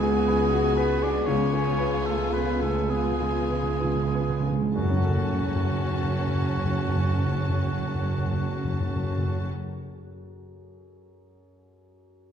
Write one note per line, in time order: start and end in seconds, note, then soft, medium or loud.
0.00 1.11 C#2 medium
0.00 1.23 C#2 medium
0.00 0.78 G#3 medium
0.00 0.18 B3 medium
0.00 1.24 B3 medium
0.00 1.23 F#4 medium
0.00 0.03 G#4 medium
0.00 0.79 G#4 medium
0.00 2.90 G#4 medium
0.00 0.43 G#4 medium
0.00 1.30 A4 soft
0.00 0.28 B4 medium
0.00 1.25 G#5 medium
0.28 0.67 B4 medium
0.52 0.92 F#4 medium
0.77 1.02 B3 medium
0.77 1.17 B4 medium
0.77 1.04 B4 medium
1.02 1.27 D4 medium
1.02 1.27 G#4 medium
1.02 1.28 D5 medium
1.26 4.46 C#2 medium
1.26 4.72 C#2 medium
1.26 2.87 B3 medium
1.26 2.06 C#4 medium
1.26 2.88 F4 medium
1.26 2.08 C#5 medium
1.26 2.87 G#5 medium
1.45 1.52 C#3 soft
1.53 1.96 G#4 medium
1.71 1.79 C#3 soft
1.78 2.22 B4 medium
1.99 2.07 C#3 soft
2.05 2.33 A3 medium
2.05 2.33 A4 soft
2.05 2.35 A4 medium
2.18 2.26 C#3 soft
2.27 2.35 C#3 soft
2.33 2.43 C#3 soft
2.33 2.62 B3 medium
2.33 2.78 B4 medium
2.33 2.61 B4 medium
2.44 2.52 C#3 soft
2.54 2.61 C#3 soft
2.62 2.71 C#3 soft
2.62 2.90 A3 medium
2.62 3.07 G#4 soft
2.62 2.92 A4 medium
2.73 2.81 C#3 medium
2.83 2.91 C#3 soft
2.89 3.00 C#3 soft
2.89 4.77 G#3 medium
2.89 3.37 B3 soft
2.89 4.47 B3 medium
2.89 4.46 F4 medium
2.89 3.81 F4 medium
2.89 4.59 G#4 medium
2.89 4.47 G#5 soft
3.02 3.10 C#3 medium
3.12 3.21 C#3 medium
3.20 3.30 C#3 medium
3.20 3.69 G#4 soft
3.31 3.41 C#3 medium
3.42 3.52 C#3 medium
3.50 3.62 C#3 medium
3.50 4.01 B4 soft
3.63 3.72 C#3 medium
3.74 3.83 C#3 medium
3.81 3.95 C#3 medium
3.81 4.34 F4 soft
3.96 4.06 C#3 medium
4.07 4.18 C#3 medium
4.14 4.65 B4 soft
4.19 4.29 C#3 medium
4.30 4.39 C#3 medium
4.40 4.50 C#3 medium
4.45 4.75 G#4 soft
4.52 4.61 C#3 medium
4.62 4.71 C#3 medium
4.75 9.48 F#1 medium
4.75 9.48 F#2 soft
4.75 9.48 F#2 medium
4.75 4.85 F#2 medium
4.75 9.49 F#3 medium
4.75 9.47 A3 medium
4.75 9.48 C#4 medium
4.75 9.49 C#4 medium
4.75 9.47 F#4 medium
4.75 9.48 F#4 medium
4.75 9.47 A5 medium
4.82 4.93 F#2 medium
4.82 9.55 F#3 soft
4.90 5.00 F#2 medium
4.90 9.62 C#4 soft
4.96 9.69 F#4 soft
5.01 5.09 F#2 medium
5.01 9.76 A4 soft
5.09 5.16 F#2 medium
5.09 9.83 F#5 soft
5.16 5.24 F#2 medium
5.24 5.32 F#2 medium
5.32 5.40 F#2 medium
5.40 5.48 F#2 medium
5.48 5.55 F#2 medium
5.55 5.63 F#2 medium
5.63 5.71 F#2 medium
5.71 5.79 F#2 medium
5.79 5.87 F#2 medium
5.87 5.95 F#2 medium
5.95 6.03 F#2 medium
6.03 6.11 F#2 medium
6.11 6.19 F#2 medium
6.19 6.26 F#2 medium
6.27 6.34 F#2 medium
6.34 6.42 F#2 medium
6.42 6.49 F#2 medium
6.49 6.57 F#2 medium
6.57 6.65 F#2 medium
6.65 6.72 F#2 medium
6.72 6.80 F#2 medium
6.80 6.88 F#2 medium
6.88 6.95 F#2 medium
6.95 7.03 F#2 medium
7.03 7.11 F#2 medium
7.11 7.18 F#2 medium
7.18 7.26 F#2 medium
7.26 7.34 F#2 medium
7.34 7.41 F#2 medium
7.42 7.49 F#2 medium
7.49 7.57 F#2 medium
7.57 7.64 F#2 medium
7.64 7.72 F#2 medium
7.72 7.79 F#2 medium
7.79 7.86 F#2 medium
7.87 7.95 F#2 medium
7.95 8.02 F#2 medium
8.03 8.10 F#2 medium
8.10 8.17 F#2 medium
8.17 8.24 F#2 medium
8.24 8.32 F#2 medium
8.32 8.39 F#2 medium
8.39 8.47 F#2 medium
8.47 8.55 F#2 medium
8.55 8.63 F#2 medium
8.64 8.72 F#2 medium
8.73 8.80 F#2 medium
8.80 8.88 F#2 medium
8.88 8.96 F#2 medium
8.96 9.03 F#2 medium
9.03 9.10 F#2 medium
9.10 9.18 F#2 medium
9.18 9.25 F#2 medium
9.25 9.33 F#2 medium
9.33 9.40 F#2 medium
9.41 9.48 F#2 medium